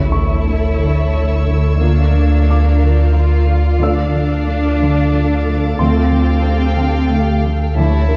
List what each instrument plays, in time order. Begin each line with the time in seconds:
Already playing: double bass section D2, sub bass D2, cello section E4, violin section A4 C#5 C#6, ambient pad A4 C#5 E5, viola section A4, impact
0.12 cello section D3, grand piano C#6
0.46 cello section D4, violin section E6
0.81 cello section D3
1.14 cello section D3, violin section G#6
1.47 cello section D3
1.80 cello section D3 D4, french horn section A#3 F4, ambient pad F4 A#4 F5, viola section A#4, violin section D5 F5
2.14 cello section D3
2.47 cello section D4, grand piano F5 D6
2.81 cello section D3
2.86 violin section G6
3.14 cello section D3 F4
3.47 cello section D3
3.80 double bass section D2, cello section D3 D4, french horn section A3 F4, viola section A4, grand piano D5 E6, ambient pad A5, violin section D6
4.14 cello section D3
4.47 cello section D4, violin section A6
4.80 cello section D3
5.13 cello section D3
5.46 cello section D3
5.78 sub bass D2, cello section D3 C4, french horn section A3 F4, ambient pad G4, violin section F5 G5, grand piano C6
6.13 cello section D3
6.45 cello section D4
6.78 cello section D3
7.11 cello section D3 A3
7.45 cello section D3
7.74 double bass section D2, cello section D3 E4, ambient pad E4 C#5, violin section C#5 A5 C#6 E6 G#6
7.78 french horn section E3 C#5, viola section A3
8.08 cello section D3, grand piano A#4